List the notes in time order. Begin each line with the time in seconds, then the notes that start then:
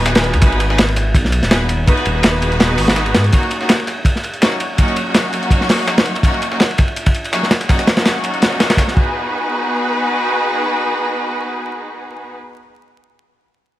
Already playing: D#1 B3 D#4 F#4 G#4 B4
0.05 snare, closed hi-hat, ride
0.15 snare, ride
0.24 closed hi-hat
0.33 D#2, closed hi-hat, ride
0.41 G#1 B3 D#4 F#4 G#4 B4, kick, closed hi-hat, ride
0.52 ride
0.60 closed hi-hat, ride
0.70 B3 D#4 F#4 G#4 B4, snare
0.78 snare, closed hi-hat, ride
0.88 ride
0.96 snare, closed hi-hat, ride
1.15 B1, kick, closed hi-hat, ride
1.25 snare
1.32 closed hi-hat, ride
1.43 D#1, snare, closed hi-hat
1.51 B3 D#4 F#4 G#4 B4, snare, closed hi-hat, ride
1.69 closed hi-hat, ride
1.87 B3 D#4 F#4 G#4 B4, kick, closed hi-hat, ride
1.97 closed hi-hat
2.05 D#1, closed hi-hat, ride
2.15 B3 D#4 F#4 G#4 B4
2.23 snare, closed hi-hat, ride
2.42 closed hi-hat, ride
2.52 closed hi-hat
2.60 snare, closed hi-hat, ride
2.78 G#1, open hi-hat, ride
2.88 snare, ride
2.96 snare, closed hi-hat
3.06 ride
3.15 G#2, snare, closed hi-hat, ride
3.24 closed hi-hat
3.33 F#3 A#3 C#4 D#4 F#4, kick, closed hi-hat, ride
3.43 ride
3.51 closed hi-hat, ride
3.61 F#3 A#3 C#4 D#4 F#4, snare
3.69 snare, closed hi-hat, ride
3.80 ride
3.87 snare, closed hi-hat, ride
4.05 kick, closed hi-hat, ride
4.16 snare
4.24 closed hi-hat, ride
4.34 closed hi-hat
4.42 F#3 A#3 C#4 D#4 F#4, snare, closed hi-hat, ride
4.52 ride
4.60 closed hi-hat, ride
4.78 F#3 A#3 C#4 D#4 F#4, kick, closed hi-hat, ride
4.88 closed hi-hat
4.96 closed hi-hat, ride
5.06 F#3 A#3 C#4 D#4 F#4
5.15 snare, closed hi-hat, ride
5.33 closed hi-hat, ride
5.43 closed hi-hat
5.51 kick, closed hi-hat, ride
5.61 snare
5.69 snare, open hi-hat, ride
5.79 snare
5.87 snare, closed hi-hat, ride
5.98 snare, ride
6.06 closed hi-hat
6.15 closed hi-hat, ride
6.23 F#3 A#3 C#4 D#4 F#4, kick, closed hi-hat, ride
6.34 ride
6.42 closed hi-hat, ride
6.51 F#3 A#3 C#4 D#4 F#4, snare
6.60 snare, closed hi-hat, ride
6.71 ride
6.78 kick, snare, closed hi-hat, ride
6.88 ride
6.96 closed hi-hat, ride
7.06 kick, ride
7.15 closed hi-hat, ride
7.24 closed hi-hat, ride
7.32 F#3 A#3 C#4 D#4 F#4, snare, closed hi-hat, ride
7.43 snare
7.51 snare, closed hi-hat, ride
7.61 snare, closed hi-hat
7.69 F#3 A#3 C#4 D#4 F#4, kick, snare, closed hi-hat, ride
7.79 snare, closed hi-hat
7.87 snare, closed hi-hat, ride
7.97 F#3 A#3 C#4 D#4 F#4, snare, ride
8.06 snare, closed hi-hat, ride
8.24 closed hi-hat, ride
8.34 closed hi-hat
8.42 snare, closed hi-hat, ride
8.52 ride
8.60 snare, closed hi-hat, ride
8.70 snare, closed hi-hat, ride
8.77 kick, snare, closed hi-hat, ride
8.88 snare
8.96 B3 D#4 F#4 G#4 B4, kick